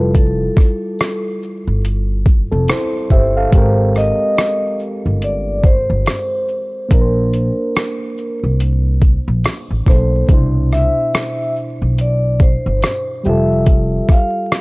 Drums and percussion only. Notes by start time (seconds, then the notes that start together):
0.15 kick, closed hi-hat
0.57 kick, cross-stick, shaker
0.99 cross-stick, closed hi-hat, tambourine
1.43 shaker
1.85 closed hi-hat
2.26 kick, shaker
2.68 cross-stick, closed hi-hat, tambourine
3.10 kick, shaker
3.52 kick, closed hi-hat
3.95 cross-stick, shaker
4.37 cross-stick, closed hi-hat, tambourine
4.79 shaker
5.22 closed hi-hat
5.64 kick, shaker
6.06 cross-stick, closed hi-hat, tambourine
6.48 shaker
6.91 kick, closed hi-hat
7.34 closed hi-hat, shaker
7.75 cross-stick, closed hi-hat, tambourine
8.17 shaker
8.60 closed hi-hat
9.02 kick, closed hi-hat, shaker
9.44 cross-stick, closed hi-hat, tambourine
9.86 kick, cross-stick, shaker
10.29 kick, closed hi-hat
10.72 cross-stick, shaker
11.14 cross-stick, closed hi-hat, tambourine
11.56 shaker
11.98 closed hi-hat
12.40 kick, shaker
12.82 cross-stick, closed hi-hat, tambourine
13.24 shaker
13.66 kick, closed hi-hat
14.08 kick, cross-stick, shaker
14.52 cross-stick, closed hi-hat, tambourine